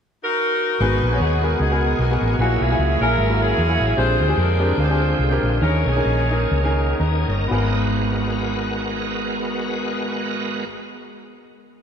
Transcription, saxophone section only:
0.24 0.79 D#4 medium
0.24 0.79 F#4 medium
0.24 0.77 A#4 medium
0.80 1.20 D#4 medium
0.80 1.56 F#4 medium
0.80 1.20 B4 medium
1.20 1.60 B3 medium
1.20 1.60 D#4 medium
1.20 1.59 G#4 medium
1.60 2.00 B3 medium
1.60 2.36 D#4 medium
1.60 1.97 G#4 medium
2.00 2.37 A#3 medium
2.00 2.37 B3 medium
2.00 2.39 F#4 medium
2.40 2.61 C#4 medium
2.40 2.60 F#4 medium
2.62 3.01 C#4 medium
2.62 3.01 E4 medium
2.62 3.01 G#4 medium
3.01 3.40 C#4 medium
3.01 3.40 E4 medium
3.01 3.38 A#4 medium
3.40 3.94 C#4 medium
3.40 3.94 E4 medium
3.40 3.97 G#4 medium
3.98 4.37 F4 medium
3.98 4.74 G#4 medium
3.98 4.35 C5 medium
4.38 5.15 D4 medium
4.38 4.77 F4 medium
4.38 4.78 A#4 medium
4.79 5.58 F4 medium
4.79 5.58 G#4 medium
4.79 5.35 C5 medium
5.62 5.86 C#4 medium
5.62 5.84 A#4 medium
5.87 6.75 C#4 medium
5.87 6.52 G#4 medium

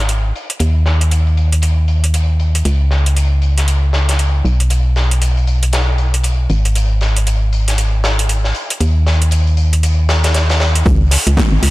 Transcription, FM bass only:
0.00 0.32 G#1 medium
0.60 2.63 D#2 medium
2.65 4.43 C#2 medium
4.45 6.48 B1 medium
6.50 8.53 G#1 medium
8.81 10.84 D#2 medium
10.86 11.17 C#2 medium
11.27 11.41 C#2 medium
11.52 11.59 G#1 loud
11.63 11.70 C#2 loud

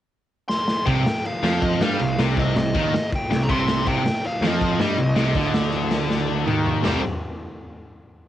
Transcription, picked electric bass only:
0.87 1.04 C2 medium
1.06 muted picked electric bass stroke soft
1.43 1.78 F2 medium
1.81 1.98 G2 loud
2.00 2.17 C2 medium
2.18 2.53 C2 loud
2.56 2.74 C2 medium
2.75 2.92 D#2 loud
3.30 3.48 C2 medium
3.49 3.84 C2 loud
3.87 4.03 C2 medium
4.03 muted picked electric bass stroke soft
4.41 4.77 F2 medium
4.80 4.97 G2 loud
4.98 5.16 C2 medium
5.16 5.34 C2 loud
5.35 6.43 D2 medium
6.47 6.82 D#2 medium
6.84 7.02 C2 medium

